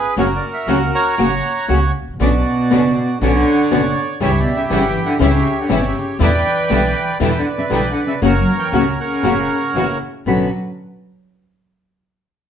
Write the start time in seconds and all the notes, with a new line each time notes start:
Already playing: G#4 B4
0.17 F#1 C#3 F#3 A#3 C#4 F#4 A#4 C#5
0.36 D5
0.53 E5
0.67 C#2 C#3 F#3 A#3 C#4 F#4 F#5
0.94 C#5 F#5 A#5
1.18 F#1 C#3 F#3 A#3 C#4 F#4
1.68 C#2 C#3 F#3 A#3 C#4 F#4
2.02 G#1
2.08 A1
2.14 A#1
2.20 B1 B2 D3 B3 C#4 D4 F#4 D5
2.70 F#1 B2 D3 B3 C#4 D4 F#4
3.21 B1 B2 D3 B3 C#4 D4 F#4 C#5 D5 F#5
3.71 F#1 B2 D3 B3 C#4 D4 F#4
4.20 C#2 C#3 E3 G3 C#4 E4 G4 C#5
4.25 G2
4.40 B2 D5
4.57 C#3 E5
4.70 G1 C#3 E3 G3 C#4 E4 F#5
4.74 C#3
4.89 E3 G5
5.06 D3 F#5
5.19 C#2 C#3 E3 G3 C#4 E4 G4 C#5 E5
5.61 D3 F#5
5.69 G1 C#3 E3 G3 C#4 E4 E5
5.78 B2 D5
5.88 C#3 E5
6.19 E2 B2 D3 G3 B3 D4 E4 B4 D5
6.23 E3 G5
6.70 B1 B2 D3 G3 B3 D4 E4
7.20 E2 B2 D3 E3 G3 B3 D4 E4
7.24 B4 D5 G5
7.39 D3 F#5
7.58 C#3 E5
7.70 B1 B2 D3 G3 B3 D4 E4
7.75 E3 G5
7.91 D3 F#5
8.07 C#3 E5
8.22 F#1 C#3 F#3 A#3 C#4 F#4 A#4 C#5 F#5
8.40 F#3 A#5
8.57 E3 G5
8.72 C#2 C#3 F#3 A#3 C#4 F#4 F#5
8.97 C#3 A#4 C#5 F#5
9.23 F#1 C#3 F#3 A#3 C#4 F#4
9.74 F#1 C#3 E3 A#3 C#4 E4 F#4
10.25 B1 B2 D3 F#3 B3 C#4 D4 F#4 B4 B5